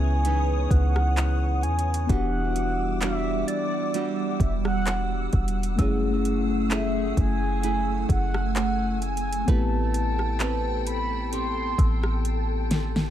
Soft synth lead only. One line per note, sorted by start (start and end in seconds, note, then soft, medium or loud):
0.00 0.72 G#5 loud
0.71 1.65 F#5 loud
1.63 2.09 G#5 loud
2.09 2.98 F#5 loud
3.02 3.45 E5 loud
3.48 4.36 D5 loud
4.41 4.52 E5 medium
4.66 5.29 F#5 medium
6.72 7.14 E5 medium
7.18 8.06 G#5 loud
8.10 8.53 F#5 loud
8.57 8.99 F#5 loud
9.03 9.50 G#5 medium
9.49 10.87 A5 loud
10.87 11.30 B5 loud
11.33 12.21 C6 loud